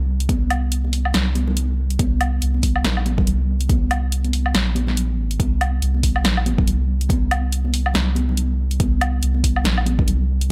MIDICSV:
0, 0, Header, 1, 3, 480
1, 0, Start_track
1, 0, Tempo, 425532
1, 328, Time_signature, 4, 2, 24, 8
1, 11863, End_track
2, 0, Start_track
2, 0, Title_t, "Sub bass"
2, 0, Program_c, 0, 38
2, 0, Note_on_c, 0, 36, 98
2, 1272, Note_off_c, 0, 36, 0
2, 1289, Note_on_c, 0, 36, 97
2, 2233, Note_off_c, 0, 36, 0
2, 2249, Note_on_c, 0, 36, 91
2, 2713, Note_off_c, 0, 36, 0
2, 2732, Note_on_c, 0, 36, 91
2, 3194, Note_off_c, 0, 36, 0
2, 3208, Note_on_c, 0, 34, 101
2, 3672, Note_off_c, 0, 34, 0
2, 3691, Note_on_c, 0, 36, 101
2, 5114, Note_off_c, 0, 36, 0
2, 5127, Note_on_c, 0, 34, 97
2, 5793, Note_off_c, 0, 34, 0
2, 5793, Note_on_c, 0, 33, 97
2, 6072, Note_off_c, 0, 33, 0
2, 6087, Note_on_c, 0, 36, 91
2, 6552, Note_off_c, 0, 36, 0
2, 6567, Note_on_c, 0, 36, 99
2, 7031, Note_off_c, 0, 36, 0
2, 7047, Note_on_c, 0, 34, 95
2, 7512, Note_off_c, 0, 34, 0
2, 7527, Note_on_c, 0, 36, 96
2, 8952, Note_off_c, 0, 36, 0
2, 8967, Note_on_c, 0, 36, 93
2, 9912, Note_off_c, 0, 36, 0
2, 9927, Note_on_c, 0, 36, 99
2, 10392, Note_off_c, 0, 36, 0
2, 10408, Note_on_c, 0, 36, 103
2, 10872, Note_off_c, 0, 36, 0
2, 10887, Note_on_c, 0, 34, 100
2, 11352, Note_off_c, 0, 34, 0
2, 11367, Note_on_c, 0, 36, 103
2, 11863, Note_off_c, 0, 36, 0
2, 11863, End_track
3, 0, Start_track
3, 0, Title_t, "Drums"
3, 229, Note_on_c, 9, 42, 59
3, 328, Note_on_c, 9, 36, 117
3, 329, Note_off_c, 9, 42, 0
3, 329, Note_on_c, 9, 42, 78
3, 332, Note_on_c, 9, 63, 94
3, 441, Note_off_c, 9, 36, 0
3, 442, Note_off_c, 9, 42, 0
3, 445, Note_off_c, 9, 63, 0
3, 569, Note_on_c, 9, 42, 52
3, 569, Note_on_c, 9, 77, 70
3, 682, Note_off_c, 9, 42, 0
3, 682, Note_off_c, 9, 77, 0
3, 810, Note_on_c, 9, 42, 81
3, 922, Note_off_c, 9, 42, 0
3, 952, Note_on_c, 9, 63, 59
3, 1048, Note_on_c, 9, 46, 88
3, 1065, Note_off_c, 9, 63, 0
3, 1161, Note_off_c, 9, 46, 0
3, 1188, Note_on_c, 9, 77, 48
3, 1286, Note_on_c, 9, 64, 89
3, 1287, Note_on_c, 9, 38, 117
3, 1287, Note_on_c, 9, 42, 78
3, 1301, Note_off_c, 9, 77, 0
3, 1399, Note_off_c, 9, 64, 0
3, 1400, Note_off_c, 9, 38, 0
3, 1400, Note_off_c, 9, 42, 0
3, 1526, Note_on_c, 9, 63, 86
3, 1528, Note_on_c, 9, 42, 54
3, 1639, Note_off_c, 9, 63, 0
3, 1641, Note_off_c, 9, 42, 0
3, 1663, Note_on_c, 9, 64, 88
3, 1768, Note_on_c, 9, 42, 82
3, 1776, Note_off_c, 9, 64, 0
3, 1881, Note_off_c, 9, 42, 0
3, 2148, Note_on_c, 9, 42, 61
3, 2244, Note_on_c, 9, 63, 91
3, 2248, Note_on_c, 9, 36, 119
3, 2249, Note_off_c, 9, 42, 0
3, 2249, Note_on_c, 9, 42, 81
3, 2357, Note_off_c, 9, 63, 0
3, 2361, Note_off_c, 9, 36, 0
3, 2362, Note_off_c, 9, 42, 0
3, 2489, Note_on_c, 9, 42, 52
3, 2489, Note_on_c, 9, 77, 71
3, 2602, Note_off_c, 9, 42, 0
3, 2602, Note_off_c, 9, 77, 0
3, 2729, Note_on_c, 9, 42, 79
3, 2842, Note_off_c, 9, 42, 0
3, 2869, Note_on_c, 9, 63, 67
3, 2968, Note_on_c, 9, 36, 63
3, 2968, Note_on_c, 9, 46, 83
3, 2981, Note_off_c, 9, 63, 0
3, 3081, Note_off_c, 9, 36, 0
3, 3081, Note_off_c, 9, 46, 0
3, 3109, Note_on_c, 9, 77, 50
3, 3207, Note_on_c, 9, 64, 105
3, 3209, Note_on_c, 9, 38, 122
3, 3209, Note_on_c, 9, 42, 76
3, 3222, Note_off_c, 9, 77, 0
3, 3320, Note_off_c, 9, 64, 0
3, 3322, Note_off_c, 9, 38, 0
3, 3322, Note_off_c, 9, 42, 0
3, 3350, Note_on_c, 9, 77, 49
3, 3450, Note_on_c, 9, 42, 53
3, 3451, Note_on_c, 9, 63, 88
3, 3463, Note_off_c, 9, 77, 0
3, 3563, Note_off_c, 9, 42, 0
3, 3564, Note_off_c, 9, 63, 0
3, 3584, Note_on_c, 9, 64, 94
3, 3587, Note_on_c, 9, 36, 108
3, 3690, Note_on_c, 9, 42, 76
3, 3697, Note_off_c, 9, 64, 0
3, 3700, Note_off_c, 9, 36, 0
3, 3803, Note_off_c, 9, 42, 0
3, 4067, Note_on_c, 9, 42, 59
3, 4167, Note_on_c, 9, 36, 124
3, 4168, Note_off_c, 9, 42, 0
3, 4168, Note_on_c, 9, 42, 75
3, 4174, Note_on_c, 9, 63, 84
3, 4280, Note_off_c, 9, 36, 0
3, 4281, Note_off_c, 9, 42, 0
3, 4286, Note_off_c, 9, 63, 0
3, 4409, Note_on_c, 9, 42, 50
3, 4409, Note_on_c, 9, 77, 81
3, 4522, Note_off_c, 9, 42, 0
3, 4522, Note_off_c, 9, 77, 0
3, 4650, Note_on_c, 9, 42, 77
3, 4762, Note_off_c, 9, 42, 0
3, 4788, Note_on_c, 9, 42, 34
3, 4788, Note_on_c, 9, 63, 71
3, 4888, Note_on_c, 9, 46, 80
3, 4900, Note_off_c, 9, 63, 0
3, 4901, Note_off_c, 9, 42, 0
3, 5001, Note_off_c, 9, 46, 0
3, 5028, Note_on_c, 9, 77, 49
3, 5122, Note_on_c, 9, 64, 82
3, 5128, Note_on_c, 9, 38, 114
3, 5128, Note_on_c, 9, 42, 73
3, 5141, Note_off_c, 9, 77, 0
3, 5235, Note_off_c, 9, 64, 0
3, 5241, Note_off_c, 9, 38, 0
3, 5241, Note_off_c, 9, 42, 0
3, 5361, Note_on_c, 9, 63, 91
3, 5368, Note_on_c, 9, 42, 50
3, 5474, Note_off_c, 9, 63, 0
3, 5481, Note_off_c, 9, 42, 0
3, 5495, Note_on_c, 9, 64, 87
3, 5508, Note_on_c, 9, 38, 35
3, 5608, Note_off_c, 9, 64, 0
3, 5609, Note_on_c, 9, 42, 77
3, 5621, Note_off_c, 9, 38, 0
3, 5721, Note_off_c, 9, 42, 0
3, 5988, Note_on_c, 9, 42, 58
3, 6087, Note_on_c, 9, 36, 113
3, 6089, Note_off_c, 9, 42, 0
3, 6089, Note_on_c, 9, 42, 75
3, 6089, Note_on_c, 9, 63, 85
3, 6200, Note_off_c, 9, 36, 0
3, 6201, Note_off_c, 9, 63, 0
3, 6202, Note_off_c, 9, 42, 0
3, 6329, Note_on_c, 9, 42, 48
3, 6329, Note_on_c, 9, 77, 82
3, 6442, Note_off_c, 9, 42, 0
3, 6442, Note_off_c, 9, 77, 0
3, 6568, Note_on_c, 9, 42, 76
3, 6681, Note_off_c, 9, 42, 0
3, 6704, Note_on_c, 9, 63, 62
3, 6806, Note_on_c, 9, 46, 86
3, 6807, Note_on_c, 9, 36, 61
3, 6817, Note_off_c, 9, 63, 0
3, 6919, Note_off_c, 9, 46, 0
3, 6920, Note_off_c, 9, 36, 0
3, 6946, Note_on_c, 9, 77, 54
3, 7040, Note_on_c, 9, 64, 94
3, 7047, Note_on_c, 9, 38, 113
3, 7047, Note_on_c, 9, 42, 74
3, 7059, Note_off_c, 9, 77, 0
3, 7153, Note_off_c, 9, 64, 0
3, 7160, Note_off_c, 9, 38, 0
3, 7160, Note_off_c, 9, 42, 0
3, 7189, Note_on_c, 9, 77, 53
3, 7289, Note_on_c, 9, 42, 52
3, 7289, Note_on_c, 9, 63, 87
3, 7301, Note_off_c, 9, 77, 0
3, 7401, Note_off_c, 9, 63, 0
3, 7402, Note_off_c, 9, 42, 0
3, 7426, Note_on_c, 9, 36, 101
3, 7426, Note_on_c, 9, 64, 78
3, 7529, Note_on_c, 9, 42, 73
3, 7539, Note_off_c, 9, 36, 0
3, 7539, Note_off_c, 9, 64, 0
3, 7642, Note_off_c, 9, 42, 0
3, 7908, Note_on_c, 9, 42, 58
3, 7999, Note_on_c, 9, 63, 95
3, 8006, Note_on_c, 9, 36, 111
3, 8010, Note_off_c, 9, 42, 0
3, 8010, Note_on_c, 9, 42, 72
3, 8111, Note_off_c, 9, 63, 0
3, 8119, Note_off_c, 9, 36, 0
3, 8122, Note_off_c, 9, 42, 0
3, 8249, Note_on_c, 9, 42, 47
3, 8249, Note_on_c, 9, 77, 83
3, 8362, Note_off_c, 9, 42, 0
3, 8362, Note_off_c, 9, 77, 0
3, 8488, Note_on_c, 9, 42, 80
3, 8601, Note_off_c, 9, 42, 0
3, 8625, Note_on_c, 9, 63, 65
3, 8727, Note_on_c, 9, 46, 91
3, 8737, Note_off_c, 9, 63, 0
3, 8840, Note_off_c, 9, 46, 0
3, 8866, Note_on_c, 9, 77, 53
3, 8956, Note_on_c, 9, 64, 95
3, 8967, Note_on_c, 9, 38, 110
3, 8967, Note_on_c, 9, 42, 73
3, 8979, Note_off_c, 9, 77, 0
3, 9069, Note_off_c, 9, 64, 0
3, 9080, Note_off_c, 9, 38, 0
3, 9080, Note_off_c, 9, 42, 0
3, 9196, Note_on_c, 9, 63, 94
3, 9208, Note_on_c, 9, 42, 50
3, 9309, Note_off_c, 9, 63, 0
3, 9320, Note_off_c, 9, 42, 0
3, 9350, Note_on_c, 9, 64, 78
3, 9446, Note_on_c, 9, 42, 77
3, 9463, Note_off_c, 9, 64, 0
3, 9558, Note_off_c, 9, 42, 0
3, 9826, Note_on_c, 9, 42, 56
3, 9926, Note_off_c, 9, 42, 0
3, 9926, Note_on_c, 9, 36, 113
3, 9926, Note_on_c, 9, 42, 76
3, 9927, Note_on_c, 9, 63, 90
3, 10039, Note_off_c, 9, 36, 0
3, 10039, Note_off_c, 9, 42, 0
3, 10040, Note_off_c, 9, 63, 0
3, 10168, Note_on_c, 9, 42, 52
3, 10168, Note_on_c, 9, 77, 83
3, 10280, Note_off_c, 9, 42, 0
3, 10280, Note_off_c, 9, 77, 0
3, 10407, Note_on_c, 9, 42, 75
3, 10520, Note_off_c, 9, 42, 0
3, 10540, Note_on_c, 9, 63, 64
3, 10646, Note_on_c, 9, 36, 59
3, 10648, Note_on_c, 9, 46, 96
3, 10652, Note_off_c, 9, 63, 0
3, 10759, Note_off_c, 9, 36, 0
3, 10761, Note_off_c, 9, 46, 0
3, 10788, Note_on_c, 9, 77, 52
3, 10878, Note_on_c, 9, 64, 100
3, 10887, Note_on_c, 9, 38, 116
3, 10887, Note_on_c, 9, 42, 76
3, 10901, Note_off_c, 9, 77, 0
3, 10991, Note_off_c, 9, 64, 0
3, 11000, Note_off_c, 9, 38, 0
3, 11000, Note_off_c, 9, 42, 0
3, 11027, Note_on_c, 9, 77, 51
3, 11123, Note_on_c, 9, 63, 86
3, 11127, Note_on_c, 9, 42, 52
3, 11140, Note_off_c, 9, 77, 0
3, 11236, Note_off_c, 9, 63, 0
3, 11240, Note_off_c, 9, 42, 0
3, 11265, Note_on_c, 9, 64, 77
3, 11267, Note_on_c, 9, 36, 95
3, 11367, Note_on_c, 9, 42, 76
3, 11378, Note_off_c, 9, 64, 0
3, 11380, Note_off_c, 9, 36, 0
3, 11480, Note_off_c, 9, 42, 0
3, 11747, Note_on_c, 9, 42, 59
3, 11859, Note_off_c, 9, 42, 0
3, 11863, End_track
0, 0, End_of_file